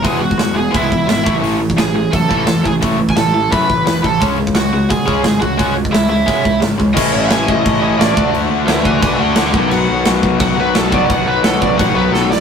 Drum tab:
CC |----------------|----------------|----------------|----------------|
HH |o---o---o---o---|o---o---o---o---|o---o---o---o---|o---o---o---o---|
SD |----o-------o---|----o-------o---|----o-------o---|----o-------o---|
BD |o--o----o-o---o-|---o----o-o---o-|o--o----o-o---o-|o--o----o-o---o-|

CC |----------------|x---x---x---x---|x---x---x---x---|x---x---x---x---|
HH |o---o---o---o---|----------------|----------------|----------------|
SD |----o-------o---|----o-------o---|----o-------o---|----o-------o---|
BD |o--o----o-o---o-|o-----o-o-----o-|------o-o-----o-|------o-o-----o-|

CC |x---x---x-------|
HH |----------------|
SD |----o-------o-o-|
BD |o-----o-o-------|